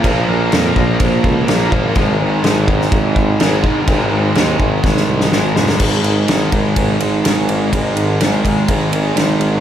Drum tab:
CC |x---x---x---x---|x---x---x---x---|x---x-----------|x---------------|
RD |----------------|----------------|----------------|--x-x-x-x-x-x-x-|
SD |----o-------o---|----o--o----o---|----o---oo-oo-oo|----o-------o---|
BD |o-----o-o-o---o-|o-----o-o-o---o-|o-----o-o-------|o-----o-o-------|

CC |----------------|
RD |x-x-x-x-x-x-x-x-|
SD |----o-------o---|
BD |o-----o-o-------|